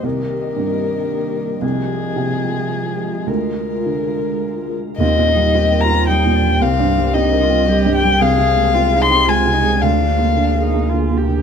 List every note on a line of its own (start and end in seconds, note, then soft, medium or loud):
0.00 1.58 C2 soft
0.00 1.58 A#3 medium
0.00 1.58 G4 medium
0.00 1.62 A#4 soft
0.00 3.24 D#5 medium
0.05 1.60 D#3 soft
0.56 1.62 G2 soft
1.61 3.24 C2 soft
1.61 3.25 F3 medium
1.61 5.00 G#3 medium
1.61 5.00 F4 medium
1.61 3.29 G#4 medium
2.16 3.28 C3 soft
3.26 4.94 D2 soft
3.26 4.75 G#3 soft
3.26 4.78 A#4 soft
3.26 4.99 A#4 medium
3.85 4.99 D3 soft
4.97 6.62 D#2 medium
4.97 6.58 D#2 medium
4.97 8.16 A#3 medium
4.97 8.16 G4 medium
4.97 9.77 C5 medium
4.97 5.82 D#5 medium
5.02 5.30 C4 medium
5.17 5.46 A#2 soft
5.29 5.58 D#4 medium
5.35 5.65 G3 soft
5.54 5.83 C4 soft
5.54 5.85 G4 medium
5.72 6.01 A#4 medium
5.81 6.10 F4 medium
5.81 6.07 A#5 medium
5.91 6.19 C4 soft
6.08 6.37 G3 soft
6.08 6.36 D#4 medium
6.08 6.64 G5 medium
6.26 6.54 A#2 soft
6.35 6.61 D4 medium
6.44 6.61 G3 soft
6.61 9.83 C2 medium
6.61 8.16 C2 medium
6.61 7.16 C4 medium
6.61 7.16 F5 medium
6.79 7.08 G2 soft
6.97 7.26 G3 soft
7.14 7.43 C4 soft
7.14 7.45 D#4 medium
7.14 7.94 D#5 medium
7.33 7.61 A#4 soft
7.43 7.70 F4 medium
7.50 7.78 C4 soft
7.67 7.95 G3 medium
7.67 8.20 G4 medium
7.85 8.13 G2 medium
7.95 8.23 G5 medium
8.03 8.20 G3 soft
8.20 9.78 C2 medium
8.20 9.82 G#3 medium
8.20 8.75 G#4 medium
8.20 11.42 G#4 medium
8.20 9.03 F5 medium
8.38 8.66 C3 medium
8.56 8.84 G#3 soft
8.74 9.02 C4 medium
8.74 8.99 F4 medium
8.92 9.20 G#4 medium
8.98 9.27 D#4 medium
8.98 9.30 C6 loud
9.10 9.38 C4 soft
9.26 9.56 G#3 soft
9.26 9.55 F4 medium
9.26 9.83 G#5 medium
9.45 9.74 C3 soft
9.53 9.79 D#4 medium
9.63 9.81 G#3 soft
9.79 11.42 D2 medium
9.79 11.42 A#3 medium
9.79 10.29 D4 medium
9.79 11.42 A#4 medium
9.79 10.92 F5 medium
10.00 10.29 D3 soft
10.19 10.48 A#3 soft
10.36 10.66 D3 soft
10.36 10.62 D4 soft
10.55 10.85 G#4 soft
10.62 10.91 D#4 soft
10.74 11.03 A#3 soft
10.90 11.22 D3 soft
10.90 11.19 F4 medium
11.10 11.40 A#3 soft
11.18 11.42 G4 medium
11.28 11.42 D3 soft